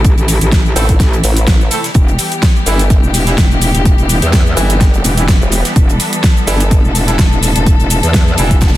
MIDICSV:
0, 0, Header, 1, 6, 480
1, 0, Start_track
1, 0, Tempo, 476190
1, 46, Time_signature, 4, 2, 24, 8
1, 8842, End_track
2, 0, Start_track
2, 0, Title_t, "Horn section"
2, 0, Program_c, 0, 61
2, 766, Note_on_c, 0, 60, 82
2, 767, Note_on_c, 0, 57, 88
2, 767, Note_on_c, 0, 64, 81
2, 767, Note_on_c, 0, 69, 96
2, 930, Note_off_c, 0, 57, 0
2, 930, Note_off_c, 0, 60, 0
2, 930, Note_off_c, 0, 64, 0
2, 930, Note_off_c, 0, 69, 0
2, 1726, Note_on_c, 0, 57, 78
2, 1726, Note_on_c, 0, 60, 74
2, 1726, Note_on_c, 0, 64, 75
2, 1726, Note_on_c, 0, 69, 89
2, 1832, Note_off_c, 0, 57, 0
2, 1832, Note_off_c, 0, 60, 0
2, 1832, Note_off_c, 0, 64, 0
2, 1832, Note_off_c, 0, 69, 0
2, 2685, Note_on_c, 0, 55, 80
2, 2686, Note_on_c, 0, 52, 87
2, 2686, Note_on_c, 0, 59, 82
2, 2686, Note_on_c, 0, 64, 102
2, 2849, Note_off_c, 0, 52, 0
2, 2849, Note_off_c, 0, 55, 0
2, 2849, Note_off_c, 0, 59, 0
2, 2849, Note_off_c, 0, 64, 0
2, 3296, Note_on_c, 0, 52, 78
2, 3296, Note_on_c, 0, 55, 71
2, 3297, Note_on_c, 0, 59, 70
2, 3297, Note_on_c, 0, 64, 84
2, 3385, Note_off_c, 0, 52, 0
2, 3385, Note_off_c, 0, 55, 0
2, 3385, Note_off_c, 0, 59, 0
2, 3385, Note_off_c, 0, 64, 0
2, 4606, Note_on_c, 0, 52, 89
2, 4606, Note_on_c, 0, 55, 85
2, 4606, Note_on_c, 0, 59, 82
2, 4606, Note_on_c, 0, 64, 100
2, 4769, Note_off_c, 0, 52, 0
2, 4769, Note_off_c, 0, 55, 0
2, 4769, Note_off_c, 0, 59, 0
2, 4769, Note_off_c, 0, 64, 0
2, 5216, Note_on_c, 0, 52, 74
2, 5216, Note_on_c, 0, 55, 70
2, 5216, Note_on_c, 0, 59, 74
2, 5216, Note_on_c, 0, 64, 85
2, 5305, Note_off_c, 0, 52, 0
2, 5305, Note_off_c, 0, 55, 0
2, 5305, Note_off_c, 0, 59, 0
2, 5305, Note_off_c, 0, 64, 0
2, 6527, Note_on_c, 0, 52, 88
2, 6527, Note_on_c, 0, 55, 82
2, 6527, Note_on_c, 0, 59, 81
2, 6527, Note_on_c, 0, 64, 102
2, 6690, Note_off_c, 0, 52, 0
2, 6690, Note_off_c, 0, 55, 0
2, 6690, Note_off_c, 0, 59, 0
2, 6690, Note_off_c, 0, 64, 0
2, 7137, Note_on_c, 0, 52, 79
2, 7137, Note_on_c, 0, 55, 75
2, 7137, Note_on_c, 0, 59, 74
2, 7137, Note_on_c, 0, 64, 86
2, 7225, Note_off_c, 0, 64, 0
2, 7226, Note_off_c, 0, 52, 0
2, 7226, Note_off_c, 0, 55, 0
2, 7226, Note_off_c, 0, 59, 0
2, 8447, Note_on_c, 0, 52, 95
2, 8447, Note_on_c, 0, 55, 82
2, 8447, Note_on_c, 0, 59, 83
2, 8447, Note_on_c, 0, 64, 103
2, 8610, Note_off_c, 0, 52, 0
2, 8610, Note_off_c, 0, 55, 0
2, 8610, Note_off_c, 0, 59, 0
2, 8610, Note_off_c, 0, 64, 0
2, 8842, End_track
3, 0, Start_track
3, 0, Title_t, "String section"
3, 0, Program_c, 1, 48
3, 0, Note_on_c, 1, 48, 85
3, 0, Note_on_c, 1, 52, 79
3, 0, Note_on_c, 1, 57, 77
3, 0, Note_on_c, 1, 64, 90
3, 1926, Note_off_c, 1, 48, 0
3, 1926, Note_off_c, 1, 52, 0
3, 1926, Note_off_c, 1, 57, 0
3, 1926, Note_off_c, 1, 64, 0
3, 1967, Note_on_c, 1, 52, 87
3, 1967, Note_on_c, 1, 55, 77
3, 1967, Note_on_c, 1, 59, 76
3, 1967, Note_on_c, 1, 67, 90
3, 5768, Note_off_c, 1, 67, 0
3, 5807, Note_on_c, 1, 69, 93
3, 8842, Note_off_c, 1, 52, 0
3, 8842, Note_off_c, 1, 55, 0
3, 8842, Note_off_c, 1, 59, 0
3, 8842, Note_off_c, 1, 69, 0
3, 8842, End_track
4, 0, Start_track
4, 0, Title_t, "Wobble bass"
4, 0, Program_c, 2, 39
4, 766, Note_on_c, 2, 33, 97
4, 988, Note_off_c, 2, 33, 0
4, 1246, Note_on_c, 2, 33, 90
4, 1708, Note_off_c, 2, 33, 0
4, 2685, Note_on_c, 2, 31, 101
4, 3035, Note_off_c, 2, 31, 0
4, 4606, Note_on_c, 2, 31, 97
4, 5069, Note_off_c, 2, 31, 0
4, 5457, Note_on_c, 2, 28, 98
4, 5676, Note_off_c, 2, 28, 0
4, 6526, Note_on_c, 2, 31, 98
4, 6876, Note_off_c, 2, 31, 0
4, 8842, End_track
5, 0, Start_track
5, 0, Title_t, "Wobble bass"
5, 0, Program_c, 3, 39
5, 0, Note_on_c, 3, 33, 95
5, 156, Note_off_c, 3, 33, 0
5, 177, Note_on_c, 3, 33, 99
5, 396, Note_off_c, 3, 33, 0
5, 417, Note_on_c, 3, 33, 90
5, 749, Note_off_c, 3, 33, 0
5, 1006, Note_on_c, 3, 33, 103
5, 1229, Note_off_c, 3, 33, 0
5, 1966, Note_on_c, 3, 28, 98
5, 2188, Note_off_c, 3, 28, 0
5, 3056, Note_on_c, 3, 28, 96
5, 3388, Note_off_c, 3, 28, 0
5, 3406, Note_on_c, 3, 28, 101
5, 3756, Note_off_c, 3, 28, 0
5, 3777, Note_on_c, 3, 28, 100
5, 3996, Note_off_c, 3, 28, 0
5, 4017, Note_on_c, 3, 28, 96
5, 4236, Note_off_c, 3, 28, 0
5, 4257, Note_on_c, 3, 40, 94
5, 4589, Note_off_c, 3, 40, 0
5, 5086, Note_on_c, 3, 28, 99
5, 5436, Note_off_c, 3, 28, 0
5, 5806, Note_on_c, 3, 28, 98
5, 6029, Note_off_c, 3, 28, 0
5, 6897, Note_on_c, 3, 28, 100
5, 7229, Note_off_c, 3, 28, 0
5, 7246, Note_on_c, 3, 28, 105
5, 7596, Note_off_c, 3, 28, 0
5, 7617, Note_on_c, 3, 28, 100
5, 7836, Note_off_c, 3, 28, 0
5, 7857, Note_on_c, 3, 28, 95
5, 8076, Note_off_c, 3, 28, 0
5, 8097, Note_on_c, 3, 40, 99
5, 8429, Note_off_c, 3, 40, 0
5, 8446, Note_on_c, 3, 29, 107
5, 8842, Note_off_c, 3, 29, 0
5, 8842, End_track
6, 0, Start_track
6, 0, Title_t, "Drums"
6, 45, Note_on_c, 9, 42, 93
6, 46, Note_on_c, 9, 36, 122
6, 47, Note_off_c, 9, 42, 0
6, 47, Note_on_c, 9, 42, 51
6, 51, Note_on_c, 9, 82, 42
6, 147, Note_off_c, 9, 36, 0
6, 147, Note_off_c, 9, 42, 0
6, 152, Note_off_c, 9, 82, 0
6, 177, Note_on_c, 9, 42, 43
6, 182, Note_on_c, 9, 82, 23
6, 278, Note_off_c, 9, 42, 0
6, 282, Note_on_c, 9, 42, 76
6, 283, Note_off_c, 9, 82, 0
6, 286, Note_on_c, 9, 46, 114
6, 291, Note_on_c, 9, 82, 83
6, 383, Note_off_c, 9, 42, 0
6, 387, Note_off_c, 9, 46, 0
6, 392, Note_off_c, 9, 82, 0
6, 417, Note_on_c, 9, 42, 63
6, 422, Note_on_c, 9, 82, 33
6, 518, Note_off_c, 9, 42, 0
6, 523, Note_off_c, 9, 82, 0
6, 526, Note_on_c, 9, 36, 127
6, 526, Note_on_c, 9, 42, 50
6, 527, Note_on_c, 9, 38, 112
6, 530, Note_off_c, 9, 38, 0
6, 530, Note_on_c, 9, 38, 124
6, 531, Note_on_c, 9, 82, 45
6, 532, Note_off_c, 9, 42, 0
6, 532, Note_on_c, 9, 42, 79
6, 627, Note_off_c, 9, 36, 0
6, 631, Note_off_c, 9, 38, 0
6, 632, Note_off_c, 9, 42, 0
6, 632, Note_off_c, 9, 82, 0
6, 662, Note_on_c, 9, 82, 21
6, 763, Note_off_c, 9, 82, 0
6, 766, Note_on_c, 9, 46, 96
6, 771, Note_on_c, 9, 42, 76
6, 771, Note_on_c, 9, 82, 81
6, 867, Note_off_c, 9, 46, 0
6, 872, Note_off_c, 9, 42, 0
6, 872, Note_off_c, 9, 82, 0
6, 897, Note_on_c, 9, 36, 65
6, 897, Note_on_c, 9, 42, 68
6, 901, Note_on_c, 9, 82, 33
6, 997, Note_off_c, 9, 42, 0
6, 998, Note_off_c, 9, 36, 0
6, 1002, Note_off_c, 9, 82, 0
6, 1006, Note_on_c, 9, 36, 123
6, 1006, Note_on_c, 9, 42, 54
6, 1010, Note_on_c, 9, 38, 65
6, 1011, Note_off_c, 9, 42, 0
6, 1011, Note_on_c, 9, 42, 84
6, 1011, Note_on_c, 9, 82, 43
6, 1107, Note_off_c, 9, 36, 0
6, 1110, Note_off_c, 9, 38, 0
6, 1112, Note_off_c, 9, 42, 0
6, 1112, Note_off_c, 9, 82, 0
6, 1141, Note_on_c, 9, 42, 49
6, 1141, Note_on_c, 9, 82, 21
6, 1242, Note_off_c, 9, 42, 0
6, 1242, Note_off_c, 9, 82, 0
6, 1245, Note_on_c, 9, 46, 111
6, 1246, Note_on_c, 9, 42, 68
6, 1250, Note_on_c, 9, 82, 76
6, 1346, Note_off_c, 9, 46, 0
6, 1347, Note_off_c, 9, 42, 0
6, 1351, Note_off_c, 9, 82, 0
6, 1377, Note_on_c, 9, 42, 67
6, 1381, Note_on_c, 9, 82, 34
6, 1477, Note_off_c, 9, 42, 0
6, 1480, Note_on_c, 9, 38, 109
6, 1482, Note_off_c, 9, 82, 0
6, 1486, Note_on_c, 9, 36, 126
6, 1486, Note_on_c, 9, 42, 55
6, 1489, Note_off_c, 9, 38, 0
6, 1489, Note_on_c, 9, 38, 127
6, 1490, Note_on_c, 9, 82, 47
6, 1494, Note_off_c, 9, 42, 0
6, 1494, Note_on_c, 9, 42, 88
6, 1587, Note_off_c, 9, 36, 0
6, 1590, Note_off_c, 9, 38, 0
6, 1591, Note_off_c, 9, 82, 0
6, 1595, Note_off_c, 9, 42, 0
6, 1621, Note_on_c, 9, 82, 23
6, 1722, Note_off_c, 9, 82, 0
6, 1722, Note_on_c, 9, 42, 65
6, 1726, Note_on_c, 9, 46, 95
6, 1730, Note_on_c, 9, 82, 77
6, 1822, Note_off_c, 9, 42, 0
6, 1827, Note_off_c, 9, 46, 0
6, 1831, Note_off_c, 9, 82, 0
6, 1857, Note_on_c, 9, 42, 64
6, 1861, Note_on_c, 9, 82, 31
6, 1863, Note_on_c, 9, 38, 59
6, 1957, Note_off_c, 9, 42, 0
6, 1960, Note_on_c, 9, 42, 89
6, 1962, Note_off_c, 9, 82, 0
6, 1964, Note_off_c, 9, 38, 0
6, 1966, Note_off_c, 9, 42, 0
6, 1966, Note_on_c, 9, 36, 123
6, 1966, Note_on_c, 9, 42, 50
6, 1971, Note_on_c, 9, 82, 45
6, 2067, Note_off_c, 9, 36, 0
6, 2067, Note_off_c, 9, 42, 0
6, 2071, Note_off_c, 9, 82, 0
6, 2099, Note_on_c, 9, 42, 47
6, 2101, Note_on_c, 9, 82, 24
6, 2200, Note_off_c, 9, 42, 0
6, 2202, Note_off_c, 9, 82, 0
6, 2202, Note_on_c, 9, 42, 64
6, 2206, Note_on_c, 9, 46, 108
6, 2210, Note_on_c, 9, 82, 82
6, 2302, Note_off_c, 9, 42, 0
6, 2306, Note_off_c, 9, 46, 0
6, 2311, Note_off_c, 9, 82, 0
6, 2336, Note_on_c, 9, 42, 60
6, 2341, Note_on_c, 9, 82, 33
6, 2437, Note_off_c, 9, 42, 0
6, 2442, Note_off_c, 9, 82, 0
6, 2442, Note_on_c, 9, 38, 111
6, 2442, Note_on_c, 9, 42, 80
6, 2445, Note_off_c, 9, 42, 0
6, 2445, Note_on_c, 9, 42, 49
6, 2446, Note_on_c, 9, 36, 125
6, 2449, Note_off_c, 9, 38, 0
6, 2449, Note_on_c, 9, 38, 118
6, 2450, Note_on_c, 9, 82, 47
6, 2546, Note_off_c, 9, 42, 0
6, 2547, Note_off_c, 9, 36, 0
6, 2550, Note_off_c, 9, 38, 0
6, 2551, Note_off_c, 9, 82, 0
6, 2581, Note_on_c, 9, 82, 22
6, 2682, Note_off_c, 9, 82, 0
6, 2684, Note_on_c, 9, 42, 71
6, 2685, Note_on_c, 9, 46, 97
6, 2690, Note_on_c, 9, 82, 83
6, 2785, Note_off_c, 9, 42, 0
6, 2786, Note_off_c, 9, 46, 0
6, 2791, Note_off_c, 9, 82, 0
6, 2816, Note_on_c, 9, 42, 67
6, 2821, Note_on_c, 9, 82, 34
6, 2917, Note_off_c, 9, 42, 0
6, 2922, Note_off_c, 9, 82, 0
6, 2925, Note_on_c, 9, 42, 54
6, 2926, Note_on_c, 9, 36, 122
6, 2928, Note_off_c, 9, 42, 0
6, 2928, Note_on_c, 9, 42, 82
6, 2930, Note_on_c, 9, 82, 50
6, 3026, Note_off_c, 9, 36, 0
6, 3028, Note_off_c, 9, 42, 0
6, 3031, Note_off_c, 9, 82, 0
6, 3060, Note_on_c, 9, 82, 24
6, 3161, Note_off_c, 9, 82, 0
6, 3165, Note_on_c, 9, 46, 105
6, 3170, Note_on_c, 9, 82, 82
6, 3173, Note_on_c, 9, 42, 68
6, 3266, Note_off_c, 9, 46, 0
6, 3271, Note_off_c, 9, 82, 0
6, 3274, Note_off_c, 9, 42, 0
6, 3296, Note_on_c, 9, 42, 67
6, 3300, Note_on_c, 9, 82, 36
6, 3305, Note_on_c, 9, 38, 50
6, 3396, Note_off_c, 9, 42, 0
6, 3401, Note_off_c, 9, 82, 0
6, 3405, Note_on_c, 9, 42, 56
6, 3406, Note_off_c, 9, 38, 0
6, 3406, Note_on_c, 9, 36, 120
6, 3408, Note_on_c, 9, 38, 123
6, 3409, Note_off_c, 9, 38, 0
6, 3409, Note_off_c, 9, 42, 0
6, 3409, Note_on_c, 9, 38, 113
6, 3409, Note_on_c, 9, 42, 96
6, 3410, Note_on_c, 9, 82, 49
6, 3507, Note_off_c, 9, 36, 0
6, 3510, Note_off_c, 9, 38, 0
6, 3510, Note_off_c, 9, 42, 0
6, 3510, Note_off_c, 9, 82, 0
6, 3541, Note_on_c, 9, 82, 23
6, 3642, Note_off_c, 9, 82, 0
6, 3642, Note_on_c, 9, 42, 65
6, 3645, Note_on_c, 9, 46, 97
6, 3650, Note_on_c, 9, 82, 80
6, 3742, Note_off_c, 9, 42, 0
6, 3746, Note_off_c, 9, 46, 0
6, 3751, Note_off_c, 9, 82, 0
6, 3776, Note_on_c, 9, 42, 65
6, 3781, Note_on_c, 9, 82, 34
6, 3877, Note_off_c, 9, 42, 0
6, 3881, Note_off_c, 9, 82, 0
6, 3885, Note_on_c, 9, 42, 48
6, 3886, Note_on_c, 9, 36, 115
6, 3887, Note_off_c, 9, 42, 0
6, 3887, Note_on_c, 9, 42, 98
6, 3890, Note_on_c, 9, 82, 46
6, 3987, Note_off_c, 9, 36, 0
6, 3988, Note_off_c, 9, 42, 0
6, 3991, Note_off_c, 9, 82, 0
6, 4013, Note_on_c, 9, 42, 42
6, 4021, Note_on_c, 9, 82, 23
6, 4114, Note_off_c, 9, 42, 0
6, 4122, Note_off_c, 9, 82, 0
6, 4125, Note_on_c, 9, 42, 71
6, 4125, Note_on_c, 9, 46, 104
6, 4130, Note_on_c, 9, 82, 87
6, 4226, Note_off_c, 9, 42, 0
6, 4226, Note_off_c, 9, 46, 0
6, 4231, Note_off_c, 9, 82, 0
6, 4256, Note_on_c, 9, 42, 65
6, 4261, Note_on_c, 9, 82, 34
6, 4357, Note_off_c, 9, 42, 0
6, 4358, Note_on_c, 9, 38, 105
6, 4360, Note_on_c, 9, 42, 84
6, 4362, Note_off_c, 9, 82, 0
6, 4365, Note_off_c, 9, 42, 0
6, 4365, Note_on_c, 9, 42, 51
6, 4366, Note_on_c, 9, 36, 119
6, 4369, Note_off_c, 9, 38, 0
6, 4369, Note_on_c, 9, 38, 115
6, 4370, Note_on_c, 9, 82, 48
6, 4466, Note_off_c, 9, 42, 0
6, 4467, Note_off_c, 9, 36, 0
6, 4469, Note_off_c, 9, 38, 0
6, 4471, Note_off_c, 9, 82, 0
6, 4501, Note_on_c, 9, 82, 24
6, 4602, Note_off_c, 9, 82, 0
6, 4606, Note_on_c, 9, 42, 69
6, 4606, Note_on_c, 9, 46, 91
6, 4610, Note_on_c, 9, 82, 87
6, 4706, Note_off_c, 9, 46, 0
6, 4707, Note_off_c, 9, 42, 0
6, 4711, Note_off_c, 9, 82, 0
6, 4736, Note_on_c, 9, 42, 73
6, 4741, Note_on_c, 9, 82, 37
6, 4837, Note_off_c, 9, 42, 0
6, 4842, Note_off_c, 9, 82, 0
6, 4846, Note_on_c, 9, 36, 119
6, 4846, Note_on_c, 9, 42, 56
6, 4849, Note_off_c, 9, 42, 0
6, 4849, Note_on_c, 9, 38, 62
6, 4849, Note_on_c, 9, 42, 87
6, 4850, Note_on_c, 9, 82, 48
6, 4947, Note_off_c, 9, 36, 0
6, 4950, Note_off_c, 9, 38, 0
6, 4950, Note_off_c, 9, 42, 0
6, 4951, Note_off_c, 9, 82, 0
6, 4977, Note_on_c, 9, 42, 48
6, 4981, Note_on_c, 9, 82, 25
6, 5078, Note_off_c, 9, 42, 0
6, 5082, Note_off_c, 9, 82, 0
6, 5082, Note_on_c, 9, 42, 66
6, 5086, Note_on_c, 9, 46, 110
6, 5091, Note_on_c, 9, 82, 78
6, 5183, Note_off_c, 9, 42, 0
6, 5187, Note_off_c, 9, 46, 0
6, 5192, Note_off_c, 9, 82, 0
6, 5217, Note_on_c, 9, 42, 68
6, 5221, Note_on_c, 9, 82, 37
6, 5317, Note_off_c, 9, 42, 0
6, 5322, Note_off_c, 9, 82, 0
6, 5326, Note_on_c, 9, 36, 122
6, 5326, Note_on_c, 9, 38, 112
6, 5326, Note_on_c, 9, 42, 54
6, 5329, Note_off_c, 9, 38, 0
6, 5329, Note_off_c, 9, 42, 0
6, 5329, Note_on_c, 9, 38, 118
6, 5329, Note_on_c, 9, 42, 81
6, 5330, Note_on_c, 9, 82, 49
6, 5427, Note_off_c, 9, 36, 0
6, 5430, Note_off_c, 9, 38, 0
6, 5430, Note_off_c, 9, 42, 0
6, 5431, Note_off_c, 9, 82, 0
6, 5461, Note_on_c, 9, 82, 25
6, 5560, Note_on_c, 9, 42, 69
6, 5562, Note_off_c, 9, 82, 0
6, 5565, Note_on_c, 9, 46, 86
6, 5570, Note_on_c, 9, 82, 81
6, 5660, Note_off_c, 9, 42, 0
6, 5666, Note_off_c, 9, 46, 0
6, 5671, Note_off_c, 9, 82, 0
6, 5696, Note_on_c, 9, 42, 68
6, 5697, Note_on_c, 9, 38, 62
6, 5701, Note_on_c, 9, 82, 36
6, 5797, Note_off_c, 9, 42, 0
6, 5798, Note_off_c, 9, 38, 0
6, 5802, Note_off_c, 9, 82, 0
6, 5806, Note_on_c, 9, 36, 114
6, 5806, Note_on_c, 9, 42, 54
6, 5811, Note_on_c, 9, 82, 46
6, 5907, Note_off_c, 9, 36, 0
6, 5907, Note_off_c, 9, 42, 0
6, 5911, Note_off_c, 9, 82, 0
6, 5941, Note_on_c, 9, 82, 24
6, 5943, Note_on_c, 9, 42, 45
6, 6042, Note_off_c, 9, 82, 0
6, 6044, Note_off_c, 9, 42, 0
6, 6046, Note_on_c, 9, 46, 103
6, 6047, Note_on_c, 9, 42, 68
6, 6051, Note_on_c, 9, 82, 83
6, 6147, Note_off_c, 9, 46, 0
6, 6148, Note_off_c, 9, 42, 0
6, 6152, Note_off_c, 9, 82, 0
6, 6177, Note_on_c, 9, 42, 67
6, 6182, Note_on_c, 9, 82, 35
6, 6277, Note_on_c, 9, 38, 124
6, 6278, Note_off_c, 9, 42, 0
6, 6280, Note_on_c, 9, 42, 89
6, 6282, Note_off_c, 9, 82, 0
6, 6286, Note_off_c, 9, 42, 0
6, 6286, Note_on_c, 9, 36, 120
6, 6286, Note_on_c, 9, 42, 57
6, 6289, Note_off_c, 9, 38, 0
6, 6289, Note_on_c, 9, 38, 114
6, 6291, Note_on_c, 9, 82, 50
6, 6387, Note_off_c, 9, 36, 0
6, 6387, Note_off_c, 9, 42, 0
6, 6390, Note_off_c, 9, 38, 0
6, 6392, Note_off_c, 9, 82, 0
6, 6421, Note_on_c, 9, 82, 23
6, 6522, Note_off_c, 9, 82, 0
6, 6526, Note_on_c, 9, 46, 94
6, 6531, Note_on_c, 9, 42, 66
6, 6531, Note_on_c, 9, 82, 88
6, 6627, Note_off_c, 9, 46, 0
6, 6631, Note_off_c, 9, 82, 0
6, 6632, Note_off_c, 9, 42, 0
6, 6657, Note_on_c, 9, 42, 72
6, 6662, Note_on_c, 9, 82, 36
6, 6758, Note_off_c, 9, 42, 0
6, 6762, Note_off_c, 9, 82, 0
6, 6765, Note_on_c, 9, 42, 83
6, 6766, Note_off_c, 9, 42, 0
6, 6766, Note_on_c, 9, 36, 116
6, 6766, Note_on_c, 9, 42, 56
6, 6771, Note_on_c, 9, 82, 51
6, 6867, Note_off_c, 9, 36, 0
6, 6867, Note_off_c, 9, 42, 0
6, 6872, Note_off_c, 9, 82, 0
6, 6901, Note_on_c, 9, 82, 24
6, 7002, Note_off_c, 9, 82, 0
6, 7006, Note_on_c, 9, 46, 105
6, 7010, Note_on_c, 9, 82, 84
6, 7013, Note_on_c, 9, 42, 65
6, 7107, Note_off_c, 9, 46, 0
6, 7111, Note_off_c, 9, 82, 0
6, 7114, Note_off_c, 9, 42, 0
6, 7126, Note_on_c, 9, 38, 51
6, 7137, Note_on_c, 9, 42, 74
6, 7142, Note_on_c, 9, 82, 37
6, 7227, Note_off_c, 9, 38, 0
6, 7238, Note_off_c, 9, 42, 0
6, 7241, Note_on_c, 9, 42, 94
6, 7242, Note_off_c, 9, 82, 0
6, 7245, Note_on_c, 9, 38, 123
6, 7246, Note_off_c, 9, 42, 0
6, 7246, Note_on_c, 9, 36, 119
6, 7246, Note_on_c, 9, 42, 60
6, 7249, Note_off_c, 9, 38, 0
6, 7249, Note_on_c, 9, 38, 125
6, 7251, Note_on_c, 9, 82, 54
6, 7347, Note_off_c, 9, 36, 0
6, 7347, Note_off_c, 9, 42, 0
6, 7350, Note_off_c, 9, 38, 0
6, 7352, Note_off_c, 9, 82, 0
6, 7382, Note_on_c, 9, 82, 25
6, 7482, Note_off_c, 9, 82, 0
6, 7486, Note_on_c, 9, 46, 93
6, 7490, Note_on_c, 9, 42, 73
6, 7491, Note_on_c, 9, 82, 89
6, 7587, Note_off_c, 9, 46, 0
6, 7590, Note_off_c, 9, 42, 0
6, 7592, Note_off_c, 9, 82, 0
6, 7617, Note_on_c, 9, 42, 73
6, 7622, Note_on_c, 9, 82, 35
6, 7718, Note_off_c, 9, 42, 0
6, 7722, Note_off_c, 9, 82, 0
6, 7726, Note_on_c, 9, 36, 114
6, 7726, Note_on_c, 9, 42, 52
6, 7727, Note_off_c, 9, 42, 0
6, 7727, Note_on_c, 9, 42, 95
6, 7731, Note_on_c, 9, 82, 47
6, 7827, Note_off_c, 9, 36, 0
6, 7828, Note_off_c, 9, 42, 0
6, 7831, Note_off_c, 9, 82, 0
6, 7859, Note_on_c, 9, 42, 43
6, 7861, Note_on_c, 9, 82, 25
6, 7960, Note_off_c, 9, 42, 0
6, 7962, Note_off_c, 9, 82, 0
6, 7965, Note_on_c, 9, 42, 67
6, 7966, Note_on_c, 9, 46, 100
6, 7971, Note_on_c, 9, 82, 89
6, 8066, Note_off_c, 9, 42, 0
6, 8067, Note_off_c, 9, 46, 0
6, 8071, Note_off_c, 9, 82, 0
6, 8097, Note_on_c, 9, 42, 67
6, 8102, Note_on_c, 9, 82, 34
6, 8198, Note_off_c, 9, 42, 0
6, 8202, Note_off_c, 9, 82, 0
6, 8203, Note_on_c, 9, 42, 83
6, 8206, Note_off_c, 9, 42, 0
6, 8206, Note_on_c, 9, 36, 116
6, 8206, Note_on_c, 9, 42, 56
6, 8209, Note_on_c, 9, 38, 123
6, 8211, Note_on_c, 9, 82, 49
6, 8307, Note_off_c, 9, 36, 0
6, 8307, Note_off_c, 9, 42, 0
6, 8310, Note_off_c, 9, 38, 0
6, 8312, Note_off_c, 9, 82, 0
6, 8342, Note_on_c, 9, 82, 25
6, 8442, Note_on_c, 9, 42, 72
6, 8443, Note_off_c, 9, 82, 0
6, 8446, Note_on_c, 9, 46, 94
6, 8451, Note_on_c, 9, 82, 84
6, 8543, Note_off_c, 9, 42, 0
6, 8547, Note_off_c, 9, 46, 0
6, 8551, Note_off_c, 9, 82, 0
6, 8577, Note_on_c, 9, 36, 60
6, 8577, Note_on_c, 9, 42, 76
6, 8582, Note_on_c, 9, 82, 38
6, 8676, Note_off_c, 9, 42, 0
6, 8676, Note_on_c, 9, 42, 66
6, 8678, Note_off_c, 9, 36, 0
6, 8682, Note_off_c, 9, 82, 0
6, 8686, Note_off_c, 9, 42, 0
6, 8686, Note_on_c, 9, 36, 116
6, 8686, Note_on_c, 9, 38, 90
6, 8686, Note_on_c, 9, 42, 62
6, 8689, Note_off_c, 9, 38, 0
6, 8689, Note_on_c, 9, 38, 64
6, 8690, Note_on_c, 9, 82, 50
6, 8750, Note_off_c, 9, 42, 0
6, 8750, Note_on_c, 9, 42, 67
6, 8757, Note_off_c, 9, 38, 0
6, 8757, Note_on_c, 9, 38, 94
6, 8787, Note_off_c, 9, 36, 0
6, 8791, Note_off_c, 9, 82, 0
6, 8842, Note_off_c, 9, 38, 0
6, 8842, Note_off_c, 9, 42, 0
6, 8842, End_track
0, 0, End_of_file